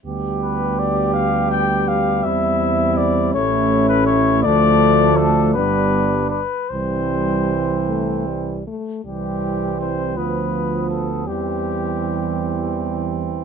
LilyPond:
<<
  \new Staff \with { instrumentName = "Trumpet" } { \time 6/8 \key c \major \tempo 4. = 54 r8 b'8 d''8 f''8 g''8 f''8 | e''4 d''8 cis''8. b'16 cis''8 | d''4 a'8 b'4 b'8 | c''2~ c''8 r8 |
g'4 c''8 b'4 a'8 | g'2~ g'8 r8 | }
  \new Staff \with { instrumentName = "Flugelhorn" } { \time 6/8 \key c \major g'2. | e'4. e'4. | d'4. d'4 r8 | c'2~ c'8 r8 |
c'4. b4. | c'2. | }
  \new Staff \with { instrumentName = "French horn" } { \time 6/8 \key c \major b2. | c'4. cis'4. | a4. b4 r8 | g4. a8 g8 a8 |
g4. f4. | g2. | }
  \new Staff \with { instrumentName = "Euphonium" } { \clef bass \time 6/8 \key c \major g2.~ | g4. a4. | f4. g4 r8 | e2~ e8 r8 |
e4. f4. | e2. | }
  \new Staff \with { instrumentName = "Tuba" } { \clef bass \time 6/8 \key c \major d,2. | e,4. a,,4. | d,4. g,,4 r8 | c,2~ c,8 r8 |
c,4. d,4. | e,2. | }
>>